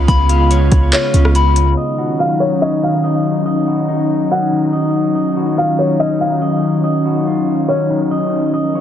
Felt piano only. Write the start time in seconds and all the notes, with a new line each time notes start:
0.93 C#5
2.20 F5
2.40 C#5
2.62 D#5
2.83 F5
4.31 F#5
5.58 F5
5.79 C#5
6.00 D#5
6.21 F5
7.68 C#5